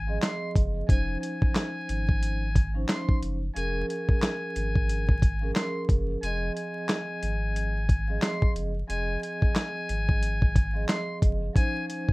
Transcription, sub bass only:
Already playing: G#1
0.56 F#1
0.89 F1
1.89 G#1
3.23 F#1
3.56 F1
4.56 G#1
5.89 F#1
6.23 F1
7.23 G#1
8.56 F#1
8.90 F1
9.90 G#1
11.22 F#1

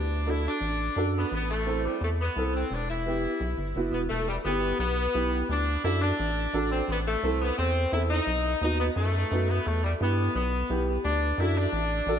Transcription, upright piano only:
0.26 D4 F#4 A4
0.97 D4 F#4 A4
1.66 C4 E4 A4
2.37 C4 E4 A4
3.06 B3 E4 G4
3.76 B3 E4 F#4
4.46 B3 E4 G4
5.14 B3 E4 G4
5.84 D4 F#4 A4
6.53 D4 F#4 A4
7.23 C4 E4 A4
7.93 C4 E4 A4
8.62 B3 D#4 F#4
9.32 B3 D#4 F#4
10.00 B3 E4 G4
10.70 B3 E4 G4
11.40 D4 F#4 A4
12.08 D4 F#4 A4

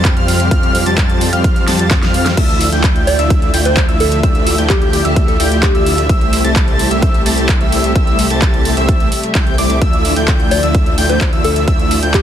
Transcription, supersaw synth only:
Already playing: G3 C4 F4 C5 A5
0.16 G3 C4 F4 C5 F5
0.51 G3 C4 F4 C5 F5
0.86 G3 C4 F4 C5 A5
1.33 G3 C4 F4 C5 F5
1.68 G3 C4 F4 C5 A5
2.03 G3 C4 F4 C5 F5
2.37 A3 E4 F4 D5 E5
2.72 A3 E4 F4 D5 G5
3.19 A3 E4 F4 D5 E5
3.54 A3 E4 F4 D5 G5
3.89 A3 E4 F4 D5 E5
4.23 A3 E4 F4 D5 E5
4.58 A3 E4 F4 D5 G5
5.05 A3 E4 F4 D5 E5
5.40 A3 E4 F4 D5 G5
5.75 A3 E4 F4 D5 E5
6.09 A3 E4 G4 C5 E5
6.44 A3 E4 G4 C5 A5
6.91 A3 E4 G4 C5 E5
7.26 A3 E4 G4 C5 A5
7.61 A3 E4 G4 C5 E5
7.95 A3 E4 G4 C5 E5
8.30 A3 E4 G4 C5 A5
8.77 A3 E4 G4 C5 E5
9.35 A3 E4 G4 C5 G5
9.58 A3 E4 G4 C5 D5
9.81 A3 E4 F4 D5 E5
10.16 A3 E4 F4 D5 G5
10.63 A3 E4 F4 D5 E5
10.98 A3 E4 F4 D5 G5
11.33 A3 E4 F4 D5 E5
11.68 A3 E4 F4 D5 E5
12.02 A3 E4 F4 D5 G5

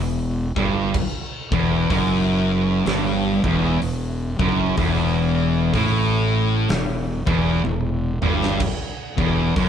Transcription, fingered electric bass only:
Already playing: E1
0.56 G1
1.51 E1
1.90 F#1
2.86 G1
3.44 E1
3.82 E1
4.39 F#1
4.77 E1
5.74 A1
6.69 E1
7.26 E1
7.65 E1
8.23 G1
9.18 E1
9.56 F#1

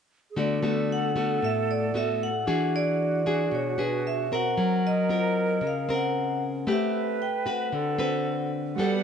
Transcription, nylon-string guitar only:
0.36 D3 A3 B3 F#4
0.63 A3 B3 F#4
1.16 A3 B3 F#4
1.42 A2
1.94 A3 B3 F#4
2.47 E3 D4 F#4 G#4
3.26 D4 F#4 G#4
3.51 B2
3.78 D4 F#4 G#4
4.32 C4 A#4
4.57 F#3
5.09 C4 F4 A#4
5.61 C#3
5.89 C4 A#4
6.67 A3 C4 G4 B4
7.46 C4 F#4 B4
7.72 D3
7.98 C4 F#4 B4
8.78 G3 B3 F#4 A4

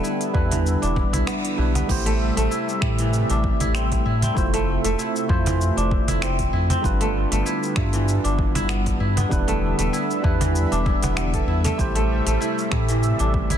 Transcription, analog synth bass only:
0.35 E2
0.83 E1
1.14 B1
1.59 B1
1.89 A1
2.37 A1
2.82 A2
3.30 A1
3.61 A1
4.06 A2
4.37 F1
4.84 F1
5.29 F2
5.77 F1
6.08 F1
6.53 F2
6.84 G1
7.32 G1
7.77 G2
8.25 G1
8.55 G1
9.00 G2
9.31 E1
9.79 E1
10.24 E2
10.72 E1
11.02 E1
11.47 E2
11.79 A1
12.27 A1
12.72 A2
13.20 A1
13.51 A1

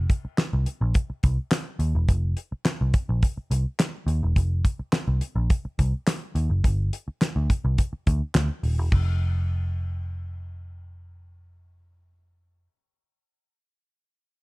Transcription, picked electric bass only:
0.25 muted picked electric bass stroke
0.53 C2
0.81 A#1
1.10 muted picked electric bass stroke
1.24 C2
1.79 D#2
1.95 E1
2.09 F1
2.52 muted picked electric bass stroke
2.81 C2
3.09 A#1
3.37 muted picked electric bass stroke
3.51 C2
4.07 D#2
4.23 E1
4.36 F1
4.79 muted picked electric bass stroke
5.08 C2
5.36 A#1
5.65 muted picked electric bass stroke
5.79 C2
6.35 D#2
6.50 F#1
6.64 G1
7.08 muted picked electric bass stroke
7.36 D2
7.65 C2
7.93 muted picked electric bass stroke
8.07 D2
8.35 D2
8.63 D#1
8.78 E1
8.92 F1

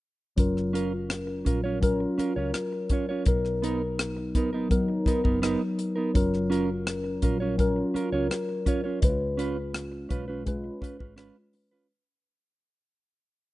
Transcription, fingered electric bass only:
0.38 F#1
1.46 A#1
2.18 muted fingered electric bass stroke
2.36 C#2
3.27 B1
4.35 A#1
5.06 muted fingered electric bass stroke
5.25 F#1
6.15 F#1
7.23 A#1
7.95 muted fingered electric bass stroke
8.12 C#2
9.03 C#2
10.11 B1
10.82 muted fingered electric bass stroke
11.00 G#1

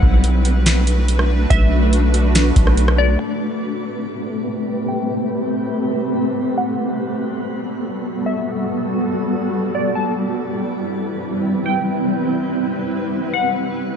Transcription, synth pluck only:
Already playing: F#5
1.50 E5
2.98 D5
3.19 A5
4.88 G5
6.58 F#5
8.26 E5
9.75 D5
9.95 A5
11.66 G5
13.34 F#5

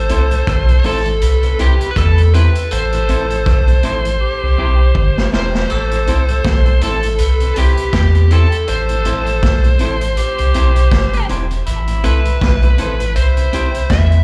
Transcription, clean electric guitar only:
0.10 C4 E4 A4 C5
0.69 muted clean electric guitar stroke
0.84 C4 E4 A4 C5
1.44 muted clean electric guitar stroke
1.59 C4 E4 G4 C5
2.34 C4 E4 G4 C5
3.09 C4 E4 A4 C5
3.84 C4 E4 A4 C5
4.58 C4 E4 G4 C5
5.33 C4 E4 G4 C5
6.08 C4 E4 A4 C5
6.67 muted clean electric guitar stroke
6.83 C4 E4 A4 C5
7.42 muted clean electric guitar stroke
7.58 C4 E4 G4 C5
8.31 C4 E4 G4 C5
9.06 C4 E4 A4 C5
9.79 C4 E4 A4 C5
10.55 C4 E4 G4 C5
11.29 C4 E4 G4 C5
12.04 C4 E4 A4 C5
12.63 muted clean electric guitar stroke
12.78 C4 E4 A4 C5
13.37 muted clean electric guitar stroke
13.53 C4 E4 G4 C5

